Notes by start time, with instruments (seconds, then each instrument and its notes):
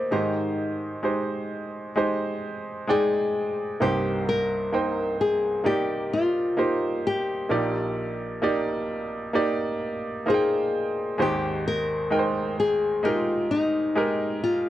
Already playing: grand piano A#3 D#4 G4 A#4 D5, nylon-string guitar C5
0.11 grand piano G#2 D#3 G#3 D#4 G4 C5, nylon-string guitar D#4
1.03 grand piano G#3 D#4 G4 C5
1.96 grand piano G#3 D#4 G4 C5
2.87 grand piano G#3 D#4 D5 G5, nylon-string guitar G#4
3.80 grand piano C2 G2 A#3 D#4 G4 C5, nylon-string guitar G4
4.29 nylon-string guitar A#4
4.72 grand piano A#3 D#4 C5 G5
5.21 nylon-string guitar G#4
5.64 grand piano A#3 D#4 G4 D5, nylon-string guitar G4
6.13 nylon-string guitar F4
6.57 grand piano A#3 D#4 G4 C5
7.07 nylon-string guitar G4
7.49 grand piano A#1 A#2 A#3 D#4 G4 D5
8.42 grand piano A#3 D#4 G4 D5
9.33 grand piano A#3 D#4 G4 D5
10.26 grand piano A#3 D#4 F4 C5, nylon-string guitar G#4
10.34 grand piano G5
11.18 grand piano G#1 D#2 G#3 D#4 G4 C5, nylon-string guitar G4
11.68 nylon-string guitar A#4
12.10 grand piano G#3 D#4 A#4 G5
12.19 grand piano C5
12.60 nylon-string guitar G#4
13.03 grand piano G#3 D#4 G4 A#4, nylon-string guitar F4
13.51 nylon-string guitar D#4
13.95 grand piano G#3 D#4 G4 A#4
14.44 nylon-string guitar F4